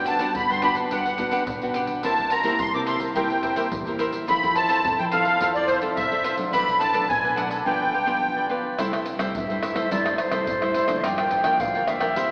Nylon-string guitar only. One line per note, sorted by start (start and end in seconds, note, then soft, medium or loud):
0.00 0.32 G3 soft
0.00 0.17 B3 medium
0.00 0.17 D4 medium
0.00 0.17 F#4 medium
0.19 0.58 B3 medium
0.19 0.58 D4 medium
0.19 0.58 F#4 medium
0.35 0.89 D3 medium
0.62 1.14 B3 medium
0.62 1.15 D4 medium
0.62 1.15 F#4 medium
0.92 1.45 G3 medium
1.19 1.57 B3 medium
1.19 1.57 D4 medium
1.19 1.57 F#4 medium
1.48 2.01 D3 medium
1.62 2.00 B3 medium
1.62 2.00 D4 medium
1.62 2.00 F#4 medium
2.03 2.57 C3 medium
2.03 2.30 A#3 medium
2.03 2.30 E4 medium
2.03 2.30 G4 medium
2.44 2.69 A#3 medium
2.44 2.69 E4 medium
2.44 2.69 G4 medium
2.60 3.13 G2 medium
2.75 3.12 A#3 medium
2.75 3.12 E4 medium
2.75 3.13 G4 medium
3.16 3.70 C3 medium
3.16 3.54 A#3 medium
3.16 3.54 E4 medium
3.16 3.54 G4 medium
3.56 3.81 A#3 medium
3.56 3.81 E4 medium
3.56 3.81 G4 medium
3.72 4.26 G2 medium
3.87 4.24 A#3 medium
3.87 4.25 E4 medium
3.87 4.25 G4 medium
4.29 4.82 F3 medium
4.29 4.37 C4 medium
4.29 4.37 E4 medium
4.29 4.37 A4 medium
4.43 4.81 C4 medium
4.43 4.81 E4 medium
4.43 4.81 A4 medium
4.84 5.38 C3 medium
4.84 5.01 C4 medium
4.84 5.01 E4 medium
4.84 5.02 A4 medium
5.12 5.36 C4 soft
5.12 5.36 E4 medium
5.12 5.37 A4 medium
5.41 5.95 F3 medium
5.41 5.79 C4 medium
5.41 5.79 E4 medium
5.41 5.79 A4 medium
5.82 6.06 C4 medium
5.82 6.06 E4 medium
5.82 6.07 A4 medium
5.98 6.51 C3 medium
6.12 6.35 C4 medium
6.12 6.35 E4 medium
6.12 6.36 A4 medium
6.38 6.62 F#3 medium
6.38 6.63 A3 medium
6.38 6.63 D4 medium
6.53 7.07 B2 medium
6.94 7.33 F#3 medium
6.94 7.33 A3 medium
6.94 7.33 D4 medium
7.09 7.63 F#2 medium
7.37 7.61 F#3 medium
7.37 7.61 A3 medium
7.37 7.61 D4 medium
7.65 8.19 G2 medium
7.65 7.92 F3 medium
7.65 7.92 B3 medium
7.65 7.93 D4 medium
8.06 8.45 F3 medium
8.06 8.45 B3 medium
8.06 8.45 D4 medium
8.21 8.75 D3 medium
8.49 8.73 F3 medium
8.49 8.74 B3 medium
8.49 8.74 D4 medium
8.78 9.32 C3 medium
8.78 9.05 G3 medium
8.78 9.05 A3 medium
8.78 9.05 E4 medium
9.18 9.43 G3 medium
9.18 9.44 A3 medium
9.18 9.44 E4 medium
9.34 9.88 G2 medium
9.49 9.73 G3 medium
9.49 9.73 A3 medium
9.49 9.73 E4 medium
9.74 9.85 G3 medium
9.74 9.86 A3 medium
9.74 9.86 E4 medium
9.90 10.44 C3 medium
9.90 10.17 G3 medium
9.90 10.17 A3 medium
9.90 10.18 E4 medium
10.31 10.56 G3 medium
10.31 10.56 A3 medium
10.31 10.56 E4 medium
10.47 11.01 G2 medium
10.62 10.85 G3 medium
10.62 10.85 A3 medium
10.62 10.86 E4 medium
10.88 11.40 F3 medium
10.88 11.41 A#3 medium
10.88 11.41 D4 medium
11.03 11.57 G2 medium
11.44 11.83 F3 medium
11.44 11.83 A#3 medium
11.44 11.83 D4 medium
11.59 12.13 D3 medium
11.87 12.14 F3 medium
11.87 12.14 A#3 medium
11.87 12.14 D4 medium
12.16 12.31 C3 medium
12.16 12.31 A#3 medium
12.16 12.31 E4 medium
12.16 12.31 G4 medium